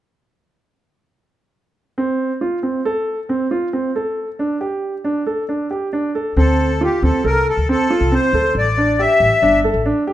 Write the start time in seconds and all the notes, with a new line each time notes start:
1.98 C4
2.41 F4
2.63 C4
2.85 A4
3.29 C4
3.51 F4
3.73 C4
3.96 A4
4.39 D4
4.61 G4
5.04 D4
5.27 A4
5.49 D4
5.71 G4
5.93 D4
6.15 A4
6.37 D2 C4 A4
6.81 F4 G4
7.02 D2 C4 A4
7.24 C2 A4 A#4
7.49 A4
7.57 D2
7.69 C4 A4
7.90 F4
8.01 C2
8.12 C4 C5
8.33 D2 A4
8.55 A1 D5
8.78 D4
8.99 G4 E5
9.20 A1
9.42 G1 D4
9.64 A4
9.74 A1
9.86 D4
10.07 G4